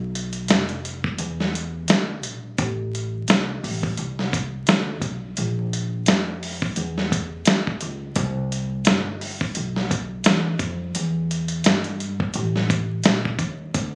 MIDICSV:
0, 0, Header, 1, 4, 480
1, 0, Start_track
1, 0, Key_signature, 0, "minor"
1, 0, Tempo, 697674
1, 1777, Time_signature, 4, 2, 24, 8
1, 9598, End_track
2, 0, Start_track
2, 0, Title_t, "Upright bass"
2, 0, Program_c, 0, 32
2, 0, Note_on_c, 0, 35, 104
2, 315, Note_off_c, 0, 35, 0
2, 342, Note_on_c, 0, 29, 84
2, 796, Note_off_c, 0, 29, 0
2, 820, Note_on_c, 0, 40, 100
2, 1275, Note_off_c, 0, 40, 0
2, 1301, Note_on_c, 0, 38, 85
2, 1539, Note_off_c, 0, 38, 0
2, 1539, Note_on_c, 0, 34, 93
2, 1766, Note_off_c, 0, 34, 0
2, 1780, Note_on_c, 0, 33, 107
2, 2235, Note_off_c, 0, 33, 0
2, 2261, Note_on_c, 0, 36, 76
2, 2487, Note_off_c, 0, 36, 0
2, 2501, Note_on_c, 0, 33, 87
2, 2727, Note_off_c, 0, 33, 0
2, 2741, Note_on_c, 0, 36, 87
2, 3195, Note_off_c, 0, 36, 0
2, 3222, Note_on_c, 0, 38, 96
2, 3451, Note_off_c, 0, 38, 0
2, 3451, Note_on_c, 0, 35, 103
2, 3682, Note_off_c, 0, 35, 0
2, 3703, Note_on_c, 0, 34, 99
2, 4156, Note_off_c, 0, 34, 0
2, 4179, Note_on_c, 0, 41, 80
2, 4634, Note_off_c, 0, 41, 0
2, 4659, Note_on_c, 0, 40, 95
2, 5139, Note_off_c, 0, 40, 0
2, 5139, Note_on_c, 0, 38, 86
2, 5366, Note_off_c, 0, 38, 0
2, 5381, Note_on_c, 0, 37, 91
2, 5607, Note_off_c, 0, 37, 0
2, 5618, Note_on_c, 0, 36, 107
2, 6101, Note_on_c, 0, 31, 78
2, 6112, Note_off_c, 0, 36, 0
2, 6555, Note_off_c, 0, 31, 0
2, 6582, Note_on_c, 0, 35, 89
2, 7036, Note_off_c, 0, 35, 0
2, 7059, Note_on_c, 0, 40, 100
2, 7286, Note_off_c, 0, 40, 0
2, 7291, Note_on_c, 0, 41, 88
2, 7522, Note_off_c, 0, 41, 0
2, 7538, Note_on_c, 0, 40, 99
2, 7994, Note_off_c, 0, 40, 0
2, 8021, Note_on_c, 0, 43, 79
2, 8377, Note_off_c, 0, 43, 0
2, 8499, Note_on_c, 0, 33, 103
2, 8954, Note_off_c, 0, 33, 0
2, 8980, Note_on_c, 0, 34, 101
2, 9207, Note_off_c, 0, 34, 0
2, 9211, Note_on_c, 0, 39, 88
2, 9442, Note_off_c, 0, 39, 0
2, 9459, Note_on_c, 0, 38, 99
2, 9598, Note_off_c, 0, 38, 0
2, 9598, End_track
3, 0, Start_track
3, 0, Title_t, "Muted upright bass strokes"
3, 8394, Note_on_c, 9, 29, 48
3, 8463, Note_off_c, 9, 29, 0
3, 9598, End_track
4, 0, Start_track
4, 0, Title_t, "Drums"
4, 105, Note_on_c, 9, 42, 65
4, 174, Note_off_c, 9, 42, 0
4, 225, Note_on_c, 9, 42, 52
4, 294, Note_off_c, 9, 42, 0
4, 333, Note_on_c, 9, 42, 84
4, 347, Note_on_c, 9, 38, 95
4, 401, Note_off_c, 9, 42, 0
4, 416, Note_off_c, 9, 38, 0
4, 473, Note_on_c, 9, 42, 43
4, 542, Note_off_c, 9, 42, 0
4, 585, Note_on_c, 9, 42, 79
4, 653, Note_off_c, 9, 42, 0
4, 717, Note_on_c, 9, 36, 80
4, 785, Note_off_c, 9, 36, 0
4, 815, Note_on_c, 9, 42, 82
4, 884, Note_off_c, 9, 42, 0
4, 966, Note_on_c, 9, 38, 32
4, 1034, Note_off_c, 9, 38, 0
4, 1069, Note_on_c, 9, 42, 69
4, 1137, Note_off_c, 9, 42, 0
4, 1293, Note_on_c, 9, 42, 83
4, 1307, Note_on_c, 9, 38, 98
4, 1362, Note_off_c, 9, 42, 0
4, 1376, Note_off_c, 9, 38, 0
4, 1537, Note_on_c, 9, 42, 81
4, 1605, Note_off_c, 9, 42, 0
4, 1777, Note_on_c, 9, 42, 91
4, 1778, Note_on_c, 9, 36, 106
4, 1846, Note_off_c, 9, 42, 0
4, 1847, Note_off_c, 9, 36, 0
4, 2028, Note_on_c, 9, 42, 65
4, 2097, Note_off_c, 9, 42, 0
4, 2256, Note_on_c, 9, 42, 83
4, 2270, Note_on_c, 9, 38, 104
4, 2325, Note_off_c, 9, 42, 0
4, 2339, Note_off_c, 9, 38, 0
4, 2506, Note_on_c, 9, 46, 56
4, 2575, Note_off_c, 9, 46, 0
4, 2637, Note_on_c, 9, 36, 89
4, 2706, Note_off_c, 9, 36, 0
4, 2734, Note_on_c, 9, 42, 80
4, 2803, Note_off_c, 9, 42, 0
4, 2884, Note_on_c, 9, 38, 33
4, 2952, Note_off_c, 9, 38, 0
4, 2980, Note_on_c, 9, 36, 87
4, 2985, Note_on_c, 9, 42, 68
4, 3049, Note_off_c, 9, 36, 0
4, 3054, Note_off_c, 9, 42, 0
4, 3211, Note_on_c, 9, 42, 76
4, 3225, Note_on_c, 9, 38, 105
4, 3280, Note_off_c, 9, 42, 0
4, 3294, Note_off_c, 9, 38, 0
4, 3451, Note_on_c, 9, 36, 94
4, 3453, Note_on_c, 9, 42, 71
4, 3519, Note_off_c, 9, 36, 0
4, 3522, Note_off_c, 9, 42, 0
4, 3694, Note_on_c, 9, 42, 96
4, 3762, Note_off_c, 9, 42, 0
4, 3944, Note_on_c, 9, 42, 68
4, 4013, Note_off_c, 9, 42, 0
4, 4171, Note_on_c, 9, 42, 88
4, 4185, Note_on_c, 9, 38, 104
4, 4239, Note_off_c, 9, 42, 0
4, 4254, Note_off_c, 9, 38, 0
4, 4422, Note_on_c, 9, 46, 55
4, 4491, Note_off_c, 9, 46, 0
4, 4555, Note_on_c, 9, 36, 90
4, 4624, Note_off_c, 9, 36, 0
4, 4652, Note_on_c, 9, 42, 83
4, 4721, Note_off_c, 9, 42, 0
4, 4800, Note_on_c, 9, 38, 33
4, 4869, Note_off_c, 9, 38, 0
4, 4899, Note_on_c, 9, 36, 86
4, 4903, Note_on_c, 9, 42, 73
4, 4967, Note_off_c, 9, 36, 0
4, 4972, Note_off_c, 9, 42, 0
4, 5129, Note_on_c, 9, 42, 91
4, 5142, Note_on_c, 9, 38, 102
4, 5197, Note_off_c, 9, 42, 0
4, 5211, Note_off_c, 9, 38, 0
4, 5278, Note_on_c, 9, 36, 79
4, 5347, Note_off_c, 9, 36, 0
4, 5370, Note_on_c, 9, 42, 85
4, 5439, Note_off_c, 9, 42, 0
4, 5611, Note_on_c, 9, 42, 96
4, 5615, Note_on_c, 9, 36, 126
4, 5680, Note_off_c, 9, 42, 0
4, 5684, Note_off_c, 9, 36, 0
4, 5862, Note_on_c, 9, 42, 69
4, 5931, Note_off_c, 9, 42, 0
4, 6088, Note_on_c, 9, 42, 87
4, 6102, Note_on_c, 9, 38, 98
4, 6157, Note_off_c, 9, 42, 0
4, 6171, Note_off_c, 9, 38, 0
4, 6339, Note_on_c, 9, 46, 57
4, 6408, Note_off_c, 9, 46, 0
4, 6474, Note_on_c, 9, 36, 90
4, 6542, Note_off_c, 9, 36, 0
4, 6570, Note_on_c, 9, 42, 91
4, 6638, Note_off_c, 9, 42, 0
4, 6717, Note_on_c, 9, 38, 36
4, 6786, Note_off_c, 9, 38, 0
4, 6817, Note_on_c, 9, 36, 94
4, 6819, Note_on_c, 9, 42, 70
4, 6886, Note_off_c, 9, 36, 0
4, 6888, Note_off_c, 9, 42, 0
4, 7046, Note_on_c, 9, 42, 86
4, 7060, Note_on_c, 9, 38, 113
4, 7115, Note_off_c, 9, 42, 0
4, 7128, Note_off_c, 9, 38, 0
4, 7289, Note_on_c, 9, 36, 96
4, 7290, Note_on_c, 9, 42, 81
4, 7357, Note_off_c, 9, 36, 0
4, 7358, Note_off_c, 9, 42, 0
4, 7532, Note_on_c, 9, 42, 103
4, 7601, Note_off_c, 9, 42, 0
4, 7781, Note_on_c, 9, 42, 70
4, 7849, Note_off_c, 9, 42, 0
4, 7901, Note_on_c, 9, 42, 54
4, 7969, Note_off_c, 9, 42, 0
4, 8009, Note_on_c, 9, 42, 85
4, 8024, Note_on_c, 9, 38, 98
4, 8078, Note_off_c, 9, 42, 0
4, 8092, Note_off_c, 9, 38, 0
4, 8147, Note_on_c, 9, 42, 49
4, 8216, Note_off_c, 9, 42, 0
4, 8258, Note_on_c, 9, 42, 75
4, 8327, Note_off_c, 9, 42, 0
4, 8393, Note_on_c, 9, 36, 87
4, 8462, Note_off_c, 9, 36, 0
4, 8488, Note_on_c, 9, 42, 83
4, 8557, Note_off_c, 9, 42, 0
4, 8639, Note_on_c, 9, 38, 31
4, 8708, Note_off_c, 9, 38, 0
4, 8737, Note_on_c, 9, 36, 92
4, 8741, Note_on_c, 9, 42, 75
4, 8806, Note_off_c, 9, 36, 0
4, 8810, Note_off_c, 9, 42, 0
4, 8968, Note_on_c, 9, 42, 86
4, 8982, Note_on_c, 9, 38, 107
4, 9037, Note_off_c, 9, 42, 0
4, 9051, Note_off_c, 9, 38, 0
4, 9118, Note_on_c, 9, 36, 83
4, 9187, Note_off_c, 9, 36, 0
4, 9210, Note_on_c, 9, 36, 92
4, 9212, Note_on_c, 9, 42, 74
4, 9278, Note_off_c, 9, 36, 0
4, 9280, Note_off_c, 9, 42, 0
4, 9456, Note_on_c, 9, 42, 101
4, 9457, Note_on_c, 9, 36, 115
4, 9525, Note_off_c, 9, 42, 0
4, 9526, Note_off_c, 9, 36, 0
4, 9598, End_track
0, 0, End_of_file